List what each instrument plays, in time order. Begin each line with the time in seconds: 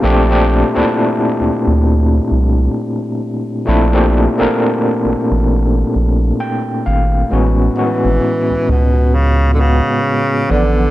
0.02 analog synth bass A#1, tine electric piano A#2 A3 C4 D4 G4
0.29 tine electric piano A#2 A3 C4 D4 G4
0.74 analog synth bass D2, tine electric piano A#2 A3 C4 D4 E4
1.41 analog synth bass D2
1.67 analog synth bass D2
2.32 analog synth bass C2
3.65 analog synth bass A#1, tine electric piano A#2 A3 C4 D4 E4
3.93 tine electric piano A#2 A3 C4 D4 G4
4.38 analog synth bass A1, tine electric piano A#3 C4 D4 A4 A#4
5.05 analog synth bass A1
5.31 analog synth bass A1
5.95 analog synth bass A#1
6.40 tine electric piano G5
6.86 analog synth bass G#1, tine electric piano F5
7.29 analog synth bass A1, tine electric piano A2 G#3 B3 C#4 F#4
7.75 tine electric piano A2 G#3 B3 C#4 F#4, tenor saxophone E3
8.05 analog synth bass G#1
8.50 analog synth bass C#2
8.69 analog synth bass C#2, tenor saxophone B2
9.14 tenor saxophone C#3
9.54 tine electric piano A2, tenor saxophone D3
9.58 tenor saxophone C#3, tine electric piano G#3 B3 C#4 F#4
10.48 analog synth bass A1, tenor saxophone D3, tine electric piano F3 B3 D5